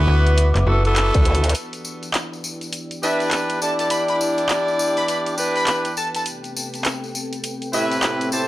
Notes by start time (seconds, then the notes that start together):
Already playing: B3 E4 F#4 B4 E5 F#5 D6
0.08 D2
0.27 closed hi-hat
0.38 closed hi-hat
0.55 F#1, clap, closed hi-hat
0.66 F#1 B3 E4 F#4 A4
0.85 B3 E4 F#4 A4, closed hi-hat
0.96 clap, closed hi-hat
1.14 D2, kick, closed hi-hat
1.25 closed hi-hat
1.35 closed hi-hat
1.44 closed hi-hat
1.49 closed hi-hat
1.54 E4 B4 D5 G5, closed hi-hat, tambourine
1.73 closed hi-hat, tambourine
1.85 tambourine
2.03 closed hi-hat, tambourine
2.14 clap, closed hi-hat, tambourine
2.33 tambourine
2.44 tambourine
2.61 closed hi-hat, tambourine
2.73 closed hi-hat, tambourine
2.91 closed hi-hat, tambourine
3.03 D4 E4 G4 B4 E5, tambourine
3.20 closed hi-hat, tambourine
3.31 clap, closed hi-hat, tambourine
3.50 closed hi-hat, tambourine
3.61 D4 E4 G4 D5 A5, tambourine
3.79 A5, closed hi-hat, tambourine
3.90 B5, closed hi-hat, tambourine
4.08 B5, closed hi-hat, tambourine
4.21 tambourine
4.38 closed hi-hat, tambourine
4.49 clap, closed hi-hat, tambourine
4.68 tambourine
4.79 tambourine
4.97 B5, closed hi-hat, tambourine
5.08 B5, closed hi-hat, tambourine
5.26 closed hi-hat, tambourine
5.38 D4 E4 G4 B4, tambourine
5.56 B5, closed hi-hat, tambourine
5.67 B5, clap, closed hi-hat, tambourine
5.85 closed hi-hat, tambourine
5.97 A5, tambourine
6.15 A5, closed hi-hat, tambourine
6.26 C4 A4, closed hi-hat, tambourine
6.44 closed hi-hat, tambourine
6.56 tambourine
6.74 closed hi-hat, tambourine
6.85 clap, closed hi-hat, tambourine
7.04 tambourine
7.15 tambourine
7.33 closed hi-hat, tambourine
7.43 closed hi-hat, tambourine
7.62 closed hi-hat, tambourine
7.73 A2 C4 E4 G4 B4 E5, tambourine
7.92 closed hi-hat, tambourine
8.02 clap, closed hi-hat, tambourine
8.21 closed hi-hat, tambourine
8.32 A2 C4 E4 G4 C5 A5, tambourine